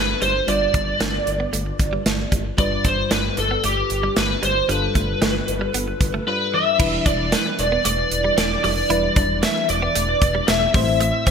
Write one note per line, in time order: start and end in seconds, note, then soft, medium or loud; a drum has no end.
0.00 0.14 G1 loud
0.00 0.48 G2 medium
0.00 0.43 G3 medium
0.00 0.44 D4 medium
0.00 0.44 F4 medium
0.00 0.21 B4 medium
0.00 0.45 B4 medium
0.22 0.41 G1 medium
0.22 0.32 G3 medium
0.22 0.49 C5 medium
0.22 closed hi-hat medium
0.47 0.67 G1 loud
0.47 1.23 G2 medium
0.47 2.54 G3 medium
0.47 0.58 G3 medium
0.47 2.54 D4 medium
0.47 2.55 F4 medium
0.47 2.02 D5 medium
0.47 2.55 D5 medium
0.47 closed hi-hat medium
0.61 muted clean electric guitar stroke soft
0.74 0.93 G1 medium
0.74 0.84 D4 medium
0.74 kick medium
0.74 closed hi-hat medium
1.00 1.20 G1 loud
1.00 1.10 D4 medium
1.00 snare loud
1.00 closed hi-hat medium
1.14 muted clean electric guitar stroke soft
1.27 1.46 G1 loud
1.27 closed hi-hat medium
1.40 1.50 B3 medium
1.53 1.72 G1 loud
1.53 1.63 A3 medium
1.53 closed hi-hat medium
1.66 muted clean electric guitar stroke soft
1.79 1.98 G1 medium
1.79 kick medium
1.79 closed hi-hat medium
1.93 2.03 G3 medium
2.06 2.25 G1 loud
2.06 snare loud
2.06 closed hi-hat medium
2.32 2.51 G1 medium
2.32 2.42 G3 medium
2.32 kick medium
2.32 closed hi-hat medium
2.57 2.77 G1 loud
2.57 3.33 G2 medium
2.57 4.64 G3 medium
2.57 2.68 G3 medium
2.57 4.65 D4 medium
2.57 4.65 F4 medium
2.57 4.66 B4 medium
2.57 2.86 D5 loud
2.57 kick loud
2.57 closed hi-hat medium
2.72 muted clean electric guitar stroke soft
2.84 3.04 G1 loud
2.84 2.95 D4 medium
2.84 3.10 C5 medium
2.84 kick medium
2.84 closed hi-hat medium
3.11 3.30 G1 medium
3.11 3.21 D4 medium
3.11 3.38 B4 medium
3.11 snare loud
3.11 closed hi-hat medium
3.24 muted clean electric guitar stroke soft
3.37 3.57 G1 loud
3.37 3.62 A4 medium
3.37 closed hi-hat medium
3.51 3.61 B3 medium
3.64 3.83 G1 loud
3.64 3.74 A3 medium
3.64 4.13 G4 medium
3.64 closed hi-hat medium
3.77 muted clean electric guitar stroke soft
3.90 4.09 G1 medium
3.90 closed hi-hat medium
4.03 4.13 G3 medium
4.16 4.36 G1 loud
4.16 4.44 B4 medium
4.16 snare loud
4.16 closed hi-hat medium
4.43 4.62 G1 loud
4.43 4.53 G3 medium
4.43 4.70 C5 medium
4.43 closed hi-hat medium
4.68 4.88 G1 loud
4.68 5.44 G2 medium
4.68 6.23 G3 medium
4.68 4.79 G3 medium
4.68 6.24 D4 medium
4.68 6.24 F4 medium
4.68 6.25 A4 medium
4.68 6.24 B4 medium
4.68 closed hi-hat medium
4.82 muted clean electric guitar stroke soft
4.95 5.14 G1 medium
4.95 5.05 A3 medium
4.95 kick medium
4.95 closed hi-hat medium
5.22 5.41 G1 medium
5.22 5.31 A3 medium
5.22 snare loud
5.22 closed hi-hat medium
5.35 muted clean electric guitar stroke soft
5.48 5.67 G1 medium
5.48 closed hi-hat medium
5.61 5.71 G3 medium
5.74 5.93 G1 loud
5.74 5.84 B3 medium
5.74 closed hi-hat loud
5.88 muted clean electric guitar stroke soft
6.01 6.20 G1 loud
6.01 kick medium
6.01 closed hi-hat medium
6.14 6.24 A3 medium
6.27 6.77 G3 medium
6.27 6.78 D4 soft
6.27 6.80 F4 soft
6.27 6.54 B4 medium
6.27 6.80 B4 medium
6.54 6.63 E3 medium
6.54 7.06 E5 loud
6.78 6.99 E1 loud
6.78 7.55 E3 medium
6.78 8.86 G3 medium
6.78 8.86 D4 medium
6.78 6.90 E4 medium
6.78 8.86 E4 medium
6.78 8.87 B4 medium
6.78 kick loud
6.78 crash medium
6.93 muted clean electric guitar stroke soft
7.06 7.34 E1 loud
7.06 7.16 D4 medium
7.06 7.31 D5 medium
7.06 kick loud
7.06 closed hi-hat medium
7.32 7.42 D4 medium
7.32 7.60 B4 medium
7.32 snare loud
7.32 closed hi-hat medium
7.32 tambourine medium
7.46 muted clean electric guitar stroke soft
7.59 7.78 E1 medium
7.59 7.84 D5 loud
7.59 closed hi-hat medium
7.72 7.82 B3 medium
7.85 8.04 E1 loud
7.85 7.95 A3 medium
7.85 8.34 D5 medium
7.85 closed hi-hat loud
7.98 muted clean electric guitar stroke soft
8.11 8.30 E1 medium
8.11 closed hi-hat medium
8.24 8.34 G3 medium
8.38 8.56 E1 loud
8.38 8.63 D5 medium
8.38 snare loud
8.38 closed hi-hat medium
8.38 tambourine medium
8.64 8.83 F1 loud
8.64 8.74 G3 medium
8.64 9.43 D5 loud
8.64 open hi-hat medium
8.89 9.09 E1 loud
8.89 9.65 E3 medium
8.89 10.70 G3 medium
8.89 10.70 D4 medium
8.89 9.00 E4 medium
8.89 10.71 E4 medium
8.89 10.71 B4 medium
8.89 closed hi-hat medium
9.04 muted clean electric guitar stroke soft
9.16 9.45 E1 loud
9.16 9.26 D4 medium
9.16 kick medium
9.16 closed hi-hat medium
9.43 9.53 D4 medium
9.43 9.67 E5 medium
9.43 snare loud
9.43 closed hi-hat medium
9.43 tambourine medium
9.56 muted clean electric guitar stroke soft
9.69 9.88 E1 loud
9.69 10.48 D5 loud
9.69 closed hi-hat medium
9.82 9.92 B3 medium
9.95 10.14 E1 loud
9.95 10.05 A3 medium
9.95 closed hi-hat loud
10.09 muted clean electric guitar stroke soft
10.22 10.41 E1 loud
10.22 kick loud
10.22 closed hi-hat medium
10.35 10.45 G3 medium
10.48 10.67 E1 loud
10.48 10.74 E5 loud
10.48 snare loud
10.48 closed hi-hat medium
10.48 tambourine medium
10.73 11.12 A1 loud
10.73 11.31 A2 medium
10.73 10.84 G3 medium
10.73 11.31 A3 medium
10.73 11.31 C4 medium
10.73 11.31 E4 medium
10.73 11.31 C5 medium
10.73 10.99 E5 loud
10.73 kick loud
10.73 open hi-hat medium
11.01 11.11 A3 medium
11.01 11.26 E5 loud
11.01 closed hi-hat medium
11.14 muted clean electric guitar stroke soft
11.27 11.31 A1 loud
11.27 11.31 C4 medium
11.27 11.31 E5 loud
11.27 kick loud
11.27 closed hi-hat medium